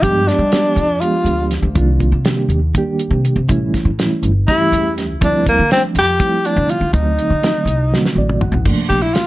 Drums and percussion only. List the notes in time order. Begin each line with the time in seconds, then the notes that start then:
0.03 kick, closed hi-hat
0.28 snare, closed hi-hat
0.52 snare, closed hi-hat
0.77 closed hi-hat
1.01 closed hi-hat
1.26 closed hi-hat
1.51 snare, closed hi-hat
1.76 kick, closed hi-hat
2.00 kick, closed hi-hat
2.25 snare, closed hi-hat
2.50 closed hi-hat
2.75 kick, closed hi-hat
2.99 closed hi-hat
3.25 closed hi-hat
3.49 kick, closed hi-hat
3.74 kick, snare, closed hi-hat
3.99 snare, closed hi-hat
4.23 closed hi-hat
4.48 kick, snare, closed hi-hat
4.73 closed hi-hat
4.98 snare, closed hi-hat
5.22 kick, closed hi-hat
5.47 kick, closed hi-hat
5.71 snare, closed hi-hat
5.95 closed hi-hat
6.20 kick, closed hi-hat
6.45 closed hi-hat
6.69 closed hi-hat
6.94 kick, closed hi-hat
7.19 closed hi-hat
7.43 snare, closed hi-hat
7.67 closed hi-hat
7.94 snare
8.05 snare
8.30 mid tom
8.41 mid tom
8.54 floor tom
8.65 kick, crash
8.90 kick, closed hi-hat
9.15 snare, closed hi-hat